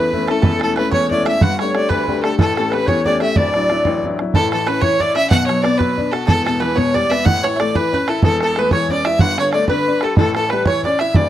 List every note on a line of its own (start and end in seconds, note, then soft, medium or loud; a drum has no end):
0.00 0.40 A1 medium
0.00 0.28 E2 medium
0.00 0.25 B4 medium
0.00 0.28 B4 medium
0.00 0.32 B4 medium
0.13 0.28 A3 soft
0.13 0.29 C#4 soft
0.13 0.29 E4 soft
0.13 bodhran soft
0.27 0.56 A3 soft
0.27 0.56 C#4 soft
0.27 0.57 E4 medium
0.27 0.41 A4 medium
0.27 0.43 A4 medium
0.27 0.41 A4 medium
0.27 bodhran medium
0.42 1.38 E1 medium
0.42 0.77 E2 medium
0.42 0.58 A4 medium
0.42 0.61 A4 medium
0.42 0.62 A4 loud
0.42 0.46 B4 medium
0.42 bodhran loud
0.60 0.77 A3 soft
0.60 0.77 C#4 soft
0.60 0.78 E4 medium
0.60 0.75 A4 medium
0.60 0.76 A4 medium
0.60 bodhran medium
0.76 1.05 A3 medium
0.76 1.05 C#4 medium
0.76 1.05 E4 medium
0.76 0.93 B4 medium
0.76 0.91 B4 medium
0.76 0.83 B4 medium
0.76 bodhran medium
0.91 1.26 E2 medium
0.91 1.25 C#5 medium
0.91 1.27 C#5 medium
0.91 1.09 C#5 medium
0.91 bodhran medium
1.10 1.25 A3 soft
1.10 1.25 C#4 soft
1.10 1.26 E4 medium
1.10 1.25 D5 medium
1.10 bodhran soft
1.25 1.39 A3 soft
1.25 1.39 C#4 soft
1.25 1.39 E4 medium
1.25 1.43 E5 medium
1.25 1.40 E5 medium
1.25 1.44 E5 medium
1.25 bodhran medium
1.41 2.36 G1 medium
1.41 1.74 G2 medium
1.41 1.58 F#5 medium
1.41 1.60 F#5 loud
1.41 bodhran loud
1.59 1.73 A3 soft
1.59 1.73 D4 soft
1.59 1.74 G4 medium
1.59 1.91 C#5 medium
1.59 1.89 C#5 medium
1.59 1.74 C#5 medium
1.59 bodhran medium
1.74 2.01 A3 medium
1.74 2.02 D4 soft
1.74 2.02 G4 medium
1.74 1.90 D5 medium
1.74 bodhran medium
1.89 2.23 D2 medium
1.89 2.22 B4 medium
1.89 2.35 B4 medium
1.89 2.24 B4 medium
1.89 bodhran medium
2.08 2.23 A3 soft
2.08 2.23 D4 soft
2.08 2.23 G4 soft
2.08 bodhran soft
2.23 2.36 A3 soft
2.23 2.36 D4 soft
2.23 2.37 G4 medium
2.23 2.38 A4 medium
2.23 2.37 A4 medium
2.23 bodhran medium
2.38 3.33 A1 medium
2.38 2.72 A2 medium
2.38 2.55 A4 medium
2.38 2.56 A4 medium
2.38 bodhran medium
2.56 2.72 A3 medium
2.56 2.72 C#4 soft
2.56 2.72 G4 soft
2.56 2.75 A4 medium
2.56 2.72 A4 medium
2.56 bodhran medium
2.71 3.00 A3 soft
2.71 3.00 C#4 soft
2.71 3.00 G4 medium
2.71 2.88 B4 medium
2.71 2.89 B4 medium
2.71 2.87 B4 medium
2.71 bodhran medium
2.87 3.21 E2 medium
2.87 3.21 C#5 medium
2.87 3.05 C#5 medium
2.87 bodhran medium
3.05 3.20 A3 soft
3.05 3.20 C#4 soft
3.05 3.21 G4 medium
3.05 3.20 D5 medium
3.05 bodhran soft
3.20 3.34 A3 soft
3.20 3.34 C#4 soft
3.20 3.34 G4 medium
3.20 3.35 E5 medium
3.20 3.38 E5 medium
3.20 bodhran medium
3.36 4.30 D1 medium
3.36 3.69 D2 medium
3.36 4.03 D5 medium
3.36 3.99 D5 medium
3.36 4.00 D5 medium
3.36 bodhran medium
3.54 3.69 F#3 soft
3.54 3.70 D4 soft
3.54 3.70 E4 soft
3.54 bodhran soft
3.70 3.97 F#3 medium
3.70 3.97 D4 medium
3.70 3.98 E4 medium
3.70 bodhran medium
3.85 4.18 A1 medium
3.85 bodhran medium
4.04 4.19 F#3 soft
4.04 4.19 D4 soft
4.04 4.20 E4 soft
4.04 bodhran soft
4.19 4.32 F#3 soft
4.19 4.32 D4 soft
4.19 4.32 E4 soft
4.19 bodhran medium
4.34 5.28 A1 medium
4.34 5.29 A2 medium
4.34 4.52 A4 medium
4.34 4.51 A4 loud
4.34 bodhran medium
4.52 4.68 E3 medium
4.52 4.69 A4 medium
4.52 4.66 A4 medium
4.52 bodhran medium
4.67 4.83 C#4 medium
4.67 4.83 B4 medium
4.67 bodhran medium
4.81 5.01 E3 medium
4.81 5.02 C#5 loud
4.81 5.00 C#5 medium
4.81 bodhran medium
5.00 5.16 E4 medium
5.00 5.15 D5 medium
5.00 5.15 D5 loud
5.00 bodhran soft
5.15 5.31 C#4 soft
5.15 5.30 E5 medium
5.15 5.29 E5 loud
5.15 bodhran medium
5.30 6.25 B1 medium
5.30 6.26 B2 medium
5.30 5.46 F#5 loud
5.30 5.48 F#5 loud
5.30 bodhran loud
5.46 5.64 F#3 medium
5.46 5.63 C#5 medium
5.46 bodhran medium
5.62 5.80 B3 medium
5.62 5.79 D5 loud
5.62 5.78 D5 medium
5.62 bodhran medium
5.78 5.98 F#3 medium
5.78 6.13 B4 medium
5.78 6.10 B4 medium
5.78 bodhran medium
5.98 6.13 D4 medium
5.98 bodhran soft
6.11 6.28 F#4 medium
6.11 6.26 A4 medium
6.11 bodhran medium
6.27 7.22 E1 medium
6.27 7.22 E2 medium
6.27 6.44 A4 loud
6.27 6.45 A4 medium
6.27 bodhran medium
6.46 6.62 B2 soft
6.46 6.61 A4 medium
6.46 6.60 A4 medium
6.46 bodhran medium
6.60 6.77 E3 medium
6.60 6.79 B4 medium
6.60 6.75 B4 medium
6.60 bodhran soft
6.76 6.94 B2 medium
6.76 6.93 C#5 medium
6.76 6.96 C#5 medium
6.76 bodhran medium
6.94 7.10 G3 soft
6.94 7.23 D5 medium
6.94 7.11 D5 loud
6.94 bodhran soft
7.10 7.26 B3 medium
7.10 7.27 E5 loud
7.10 bodhran medium
7.25 8.19 A1 medium
7.25 8.20 A2 medium
7.25 7.45 F#5 loud
7.25 7.43 F#5 medium
7.25 bodhran medium
7.43 7.59 E3 medium
7.43 7.61 C#5 medium
7.43 7.56 C#5 medium
7.43 bodhran medium
7.56 7.74 A3 medium
7.56 7.77 D5 medium
7.56 7.74 D5 medium
7.56 7.59 E5 medium
7.56 bodhran medium
7.75 7.92 E3 medium
7.75 8.10 B4 medium
7.75 7.93 B4 medium
7.75 bodhran medium
7.93 8.08 C#4 soft
7.93 8.08 B4 medium
7.93 bodhran soft
8.08 8.23 E4 medium
8.08 8.24 A4 medium
8.08 8.23 A4 medium
8.08 bodhran medium
8.23 9.17 E1 medium
8.23 9.18 E2 medium
8.23 8.40 A4 loud
8.23 8.55 A4 medium
8.23 8.41 A4 medium
8.23 bodhran medium
8.41 8.56 E3 soft
8.41 8.60 A4 medium
8.41 8.56 A4 medium
8.41 bodhran medium
8.56 8.72 A3 medium
8.56 8.71 B4 medium
8.56 8.72 B4 medium
8.56 bodhran medium
8.71 8.89 E3 medium
8.71 8.89 C#5 medium
8.71 8.92 C#5 medium
8.71 bodhran medium
8.89 9.05 C#4 medium
8.89 9.07 D5 medium
8.89 9.06 D5 loud
8.89 9.05 D5 medium
8.89 bodhran soft
9.05 9.20 E4 medium
9.05 9.22 E5 medium
9.05 9.20 E5 medium
9.05 bodhran medium
9.19 10.14 G1 medium
9.19 10.15 G2 medium
9.19 9.39 F#5 loud
9.19 9.37 F#5 medium
9.19 9.38 F#5 loud
9.19 bodhran loud
9.38 9.53 D3 medium
9.38 9.53 C#5 medium
9.38 9.52 C#5 medium
9.38 9.54 C#5 medium
9.38 bodhran medium
9.53 9.69 A3 medium
9.53 9.67 D5 medium
9.53 9.68 D5 medium
9.53 9.70 D5 medium
9.53 bodhran medium
9.68 9.87 D3 medium
9.68 10.04 B4 medium
9.68 10.05 B4 medium
9.68 10.00 B4 medium
9.68 bodhran medium
9.88 10.02 D4 medium
10.01 10.18 G4 medium
10.01 10.17 A4 medium
10.01 10.16 A4 medium
10.01 bodhran medium
10.17 11.12 A1 medium
10.17 11.12 A2 medium
10.17 10.34 A4 medium
10.17 10.35 A4 medium
10.17 bodhran loud
10.35 10.51 E3 medium
10.35 10.51 A4 medium
10.35 10.50 A4 medium
10.35 10.47 A4 medium
10.35 bodhran medium
10.48 10.66 G3 medium
10.48 10.66 B4 medium
10.48 10.69 B4 medium
10.48 10.52 C#5 medium
10.48 bodhran medium
10.53 10.68 B4 medium
10.65 10.84 E3 medium
10.65 10.83 C#5 medium
10.65 10.84 C#5 medium
10.65 10.85 C#5 medium
10.65 bodhran loud
10.83 11.00 C#4 medium
10.83 11.01 D5 medium
10.83 11.00 D5 medium
10.83 10.99 D5 medium
10.83 bodhran soft
10.99 11.15 E4 medium
10.99 11.17 E5 medium
10.99 11.15 E5 medium
10.99 bodhran medium
11.14 11.29 D1 medium
11.14 11.29 D2 medium
11.14 11.29 D5 medium
11.14 bodhran loud